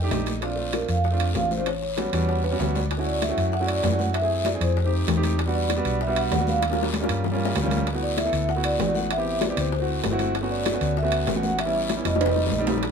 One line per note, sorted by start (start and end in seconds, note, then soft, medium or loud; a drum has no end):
0.00 0.30 A3 medium
0.00 0.30 D4 medium
0.00 0.31 D#4 medium
0.00 0.10 G5 medium
0.04 0.31 G4 medium
0.11 0.83 A#1 medium
0.11 0.40 D#5 medium
0.11 high bongo soft
0.11 low bongo medium
0.11 high conga medium
0.11 high timbale medium
0.11 low timbale medium
0.11 short guiro medium
0.26 high bongo soft
0.26 high conga medium
0.26 high timbale medium
0.26 short guiro medium
0.41 0.53 A3 medium
0.41 0.53 C4 medium
0.41 0.53 D4 medium
0.41 0.54 F4 medium
0.41 0.72 D5 medium
0.41 high bongo medium
0.41 high timbale medium
0.41 long guiro medium
0.56 0.95 A3 medium
0.56 0.95 C4 medium
0.56 0.96 D4 medium
0.56 0.96 F4 medium
0.56 high bongo soft
0.56 high conga soft
0.73 0.81 A#4 medium
0.73 high bongo medium
0.73 high conga soft
0.73 high timbale medium
0.73 low timbale soft
0.73 short guiro medium
0.88 1.32 F2 medium
0.88 1.18 F5 medium
0.88 high conga soft
0.88 high timbale medium
0.88 short guiro medium
1.04 high bongo medium
1.04 high conga soft
1.04 long guiro medium
1.11 1.28 A3 medium
1.11 1.28 C4 medium
1.11 1.29 D4 medium
1.11 1.29 F4 medium
1.20 high conga soft
1.20 high timbale medium
1.34 2.07 A1 medium
1.34 1.51 A3 medium
1.34 1.51 C4 medium
1.34 1.52 D4 medium
1.34 1.52 F4 medium
1.34 1.52 F5 medium
1.34 high bongo soft
1.34 low bongo medium
1.34 high conga medium
1.34 high timbale medium
1.34 low timbale medium
1.34 short guiro medium
1.51 1.59 C5 medium
1.51 high bongo soft
1.51 high conga medium
1.51 short guiro medium
1.57 1.66 A3 medium
1.57 1.66 C4 medium
1.57 1.66 D4 medium
1.57 1.67 F4 medium
1.66 2.56 C#5 medium
1.66 high bongo medium
1.66 high timbale medium
1.66 long guiro medium
1.82 high bongo soft
1.82 high conga soft
1.97 2.08 G3 medium
1.97 2.08 B3 medium
1.97 2.09 C#4 medium
1.97 2.09 F#4 medium
1.97 high bongo medium
1.97 high conga medium
1.97 high timbale medium
1.97 low timbale medium
1.97 short guiro medium
2.12 2.56 E2 medium
2.12 2.40 G3 medium
2.12 2.40 B3 medium
2.12 2.40 C#4 medium
2.12 2.41 F#4 medium
2.12 2.28 A5 medium
2.12 high timbale medium
2.12 short guiro medium
2.29 2.43 F#5 medium
2.29 high bongo medium
2.29 high conga soft
2.29 long guiro medium
2.44 2.59 F#5 medium
2.44 high conga soft
2.44 high timbale medium
2.51 2.79 G3 medium
2.51 2.79 B3 medium
2.51 2.79 C#4 medium
2.51 2.80 F#4 medium
2.59 3.32 D2 medium
2.59 2.74 E5 medium
2.59 high bongo soft
2.59 low bongo medium
2.59 high conga medium
2.59 low timbale medium
2.59 short guiro medium
2.75 2.90 D5 medium
2.75 high bongo soft
2.75 high conga medium
2.75 low timbale medium
2.75 short guiro medium
2.91 high bongo medium
2.91 high conga soft
2.91 high timbale medium
2.91 long guiro medium
2.97 3.20 A3 medium
2.97 3.20 C#4 medium
2.97 3.20 E4 medium
2.97 3.21 F#4 medium
3.06 3.22 D5 medium
3.06 high bongo soft
3.06 high conga soft
3.22 3.54 E5 medium
3.22 high bongo medium
3.22 high conga medium
3.22 high timbale medium
3.22 low timbale medium
3.22 short guiro medium
3.29 3.51 A3 medium
3.29 3.51 C#4 medium
3.29 3.51 E4 medium
3.29 3.52 F#4 medium
3.37 3.80 F#2 medium
3.37 high conga soft
3.37 high timbale medium
3.37 short guiro medium
3.52 3.68 F#5 loud
3.52 high bongo medium
3.52 high conga soft
3.52 long guiro medium
3.60 3.82 A3 medium
3.60 3.82 C#4 medium
3.60 3.83 E4 medium
3.60 3.83 F#4 medium
3.67 3.96 D5 medium
3.67 high conga soft
3.67 high timbale medium
3.83 4.56 F#2 medium
3.83 high bongo soft
3.83 low bongo medium
3.83 high conga medium
3.83 high timbale medium
3.83 low timbale medium
3.83 short guiro medium
3.91 4.13 A3 medium
3.91 4.13 C#4 medium
3.91 4.14 E4 medium
3.91 4.14 F#4 medium
3.99 4.13 F#5 medium
3.99 high bongo soft
3.99 high conga medium
3.99 short guiro medium
4.13 4.46 E5 medium
4.13 high bongo medium
4.13 high conga soft
4.13 high timbale medium
4.13 long guiro medium
4.22 4.44 A3 medium
4.22 4.44 C4 medium
4.22 4.44 E4 medium
4.22 4.45 G#4 medium
4.30 high bongo soft
4.30 high conga soft
4.45 4.61 D5 medium
4.45 high bongo medium
4.45 high conga medium
4.45 high timbale medium
4.45 low timbale medium
4.45 short guiro medium
4.53 4.75 A3 medium
4.53 4.75 C4 medium
4.53 4.76 E4 medium
4.53 4.76 G#4 medium
4.61 5.04 F2 medium
4.61 4.91 C5 medium
4.61 high conga soft
4.61 high timbale medium
4.61 short guiro medium
4.77 high bongo medium
4.77 high conga soft
4.77 long guiro medium
4.84 5.06 A3 medium
4.84 5.06 C4 medium
4.84 5.07 D#4 medium
4.84 5.07 G4 medium
4.92 high conga soft
5.07 5.80 E2 medium
5.07 high bongo soft
5.07 low bongo medium
5.07 high conga medium
5.07 high timbale medium
5.07 low timbale medium
5.07 short guiro medium
5.16 5.37 A3 medium
5.16 5.37 C4 medium
5.16 5.38 D#4 medium
5.16 5.38 G4 medium
5.23 high bongo soft
5.23 high conga medium
5.23 high timbale medium
5.23 short guiro medium
5.38 high bongo medium
5.38 high conga soft
5.38 high timbale medium
5.38 long guiro medium
5.46 5.68 G3 medium
5.46 5.68 B3 medium
5.46 5.68 D4 medium
5.46 5.69 F#4 medium
5.54 6.02 D5 medium
5.54 high bongo soft
5.54 high conga soft
5.70 high bongo medium
5.70 high conga medium
5.70 high timbale medium
5.70 low timbale medium
5.70 short guiro medium
5.76 5.98 G3 medium
5.76 5.99 B3 medium
5.76 5.99 D4 medium
5.76 5.99 F#4 medium
5.85 6.28 B1 loud
5.85 high conga soft
5.85 high timbale medium
5.85 short guiro medium
6.01 6.16 E5 medium
6.01 high bongo medium
6.01 high conga soft
6.01 long guiro medium
6.07 6.30 G3 medium
6.07 6.30 B3 medium
6.07 6.30 D4 medium
6.07 6.30 F#4 medium
6.16 6.49 F#5 loud
6.16 high conga soft
6.16 high timbale medium
6.31 7.03 D#2 medium
6.31 high bongo soft
6.31 low bongo medium
6.31 high conga medium
6.31 high timbale medium
6.31 low timbale medium
6.31 short guiro medium
6.39 6.61 G3 medium
6.39 6.61 B3 medium
6.39 6.61 D4 medium
6.39 6.62 F#4 medium
6.47 6.77 F5 medium
6.47 high bongo soft
6.47 high conga medium
6.47 short guiro medium
6.62 high bongo medium
6.62 high conga soft
6.62 high timbale medium
6.62 long guiro medium
6.70 6.92 G3 medium
6.70 6.92 A#3 medium
6.70 6.92 C#4 medium
6.70 6.93 F4 medium
6.70 high bongo medium
6.79 high conga soft
6.83 high bongo loud
6.93 high bongo medium
6.93 high conga medium
6.93 high timbale medium
6.93 low timbale medium
6.93 short guiro medium
7.00 7.23 G3 medium
7.00 7.23 A#3 medium
7.00 7.23 C#4 medium
7.00 7.23 F4 loud
7.00 high bongo medium
7.09 7.52 G2 loud
7.09 high timbale medium
7.09 short guiro medium
7.24 low bongo medium
7.24 high conga soft
7.24 long guiro medium
7.31 7.53 G3 medium
7.31 7.54 A#3 medium
7.31 7.54 C#4 medium
7.31 7.55 F4 medium
7.31 low bongo medium
7.41 high conga soft
7.45 low bongo medium
7.55 8.27 D2 medium
7.55 high conga medium
7.55 high timbale medium
7.55 low timbale medium
7.55 short guiro medium
7.62 7.85 G3 medium
7.62 7.85 A#3 medium
7.62 7.85 C#4 medium
7.62 7.85 F4 medium
7.62 low bongo medium
7.71 high conga medium
7.71 high timbale medium
7.71 short guiro medium
7.77 low bongo medium
7.86 high bongo medium
7.86 high conga soft
7.86 high timbale medium
7.86 long guiro medium
7.93 8.15 A3 medium
7.93 8.16 B3 medium
7.93 8.16 E4 medium
7.93 8.16 F#4 medium
8.01 8.17 D5 medium
8.01 high bongo soft
8.01 high conga soft
8.17 8.46 E5 medium
8.17 high bongo medium
8.17 high conga medium
8.17 high timbale medium
8.17 low timbale medium
8.17 short guiro medium
8.24 8.47 A3 medium
8.24 8.47 B3 medium
8.24 8.47 E4 medium
8.24 8.48 A4 medium
8.32 8.76 D2 medium
8.32 high conga soft
8.32 high timbale medium
8.32 short guiro medium
8.48 8.64 F#5 medium
8.48 high bongo medium
8.48 high conga soft
8.48 long guiro medium
8.55 8.78 A3 medium
8.55 8.78 B3 medium
8.55 8.78 E4 medium
8.55 8.78 F#4 medium
8.63 8.93 D5 medium
8.63 high conga soft
8.63 high timbale loud
8.79 9.51 A1 medium
8.79 high bongo soft
8.79 low bongo medium
8.79 high conga medium
8.79 high timbale medium
8.79 low timbale medium
8.79 short guiro medium
8.86 9.09 A3 medium
8.86 9.09 B3 medium
8.86 9.09 E4 medium
8.86 9.09 F#4 medium
8.95 9.11 F#5 medium
8.95 high bongo soft
8.95 high conga medium
8.95 short guiro medium
9.11 9.43 E5 medium
9.11 high bongo medium
9.11 high timbale medium
9.11 long guiro medium
9.17 9.40 B3 medium
9.17 9.40 C4 medium
9.17 9.40 E4 medium
9.17 9.41 G4 medium
9.26 high bongo soft
9.26 high conga soft
9.41 9.58 D5 medium
9.41 high bongo medium
9.41 high conga medium
9.41 high timbale medium
9.41 low timbale medium
9.41 short guiro medium
9.48 9.70 B3 medium
9.48 9.71 C4 medium
9.48 9.71 E4 medium
9.48 9.71 G4 medium
9.57 10.00 D2 medium
9.57 9.87 C5 medium
9.57 high conga soft
9.57 high timbale medium
9.57 short guiro medium
9.72 high bongo medium
9.72 high conga soft
9.72 long guiro medium
9.79 10.02 A3 medium
9.79 10.02 C4 medium
9.79 10.02 E4 medium
9.79 10.03 F#4 medium
9.88 high conga soft
10.03 10.76 G1 medium
10.03 high bongo soft
10.03 low bongo medium
10.03 high conga medium
10.03 high timbale medium
10.03 low timbale medium
10.03 short guiro medium
10.11 10.33 A3 medium
10.11 10.33 C4 medium
10.11 10.33 E4 medium
10.11 10.34 F#4 loud
10.19 high bongo soft
10.19 high conga medium
10.19 high timbale medium
10.19 short guiro medium
10.35 high bongo medium
10.35 high conga soft
10.35 high timbale medium
10.35 long guiro medium
10.41 10.63 A3 medium
10.41 10.64 B3 medium
10.41 10.64 C#4 medium
10.41 10.64 F#4 medium
10.50 10.94 D5 medium
10.50 high bongo soft
10.50 high conga soft
10.66 high bongo medium
10.66 high conga medium
10.66 high timbale medium
10.66 low timbale medium
10.66 short guiro medium
10.72 10.94 A3 medium
10.72 10.95 B3 medium
10.72 10.95 C#4 medium
10.72 10.95 F#4 medium
10.81 11.24 D2 loud
10.81 high timbale medium
10.81 short guiro medium
10.97 11.26 E5 medium
10.97 high bongo medium
10.97 high conga soft
10.97 long guiro medium
11.02 11.25 A3 medium
11.02 11.26 B3 medium
11.02 11.26 C#4 medium
11.02 11.26 F#4 medium
11.12 high conga soft
11.12 high timbale medium
11.27 11.99 A1 medium
11.27 high bongo soft
11.27 low bongo medium
11.27 high conga medium
11.27 high timbale medium
11.27 low timbale medium
11.27 short guiro medium
11.34 11.56 A3 medium
11.34 11.57 B3 medium
11.34 11.57 C#4 medium
11.34 11.57 F#4 medium
11.43 11.51 F#5 medium
11.43 high bongo soft
11.43 high conga medium
11.43 short guiro medium
11.58 11.88 E5 medium
11.58 high bongo medium
11.58 high conga soft
11.58 high timbale medium
11.58 long guiro medium
11.65 11.87 G3 medium
11.65 11.88 B3 medium
11.65 11.88 C#4 medium
11.65 11.88 E4 medium
11.74 high bongo soft
11.74 high conga soft
11.90 high bongo medium
11.90 high conga medium
11.90 high timbale medium
11.90 low timbale medium
11.90 short guiro medium
11.96 12.19 G3 medium
11.96 12.19 B3 medium
11.96 12.19 C#4 medium
11.96 12.20 E4 medium
12.05 12.48 F1 medium
12.05 12.63 D#5 medium
12.05 high bongo medium
12.05 high conga soft
12.05 high timbale medium
12.05 short guiro medium
12.16 high bongo medium
12.21 high conga soft
12.21 high timbale medium
12.21 long guiro medium
12.26 12.50 G3 medium
12.26 12.50 A3 medium
12.26 12.50 C4 medium
12.26 12.51 D#4 medium
12.26 low bongo medium
12.36 high bongo medium
12.36 high conga soft
12.47 low bongo medium
12.52 12.91 A#1 medium
12.52 high conga medium
12.52 short guiro medium
12.59 12.81 G3 medium
12.59 12.81 A3 medium
12.59 12.81 C4 medium
12.59 12.82 D#4 medium
12.67 low bongo medium
12.67 high conga medium
12.67 low timbale medium
12.67 short guiro medium
12.78 low bongo medium
12.82 12.91 C4 soft
12.82 12.91 D4 medium
12.82 12.91 A4 medium
12.82 high bongo medium
12.82 high conga soft
12.82 high timbale medium
12.82 long guiro medium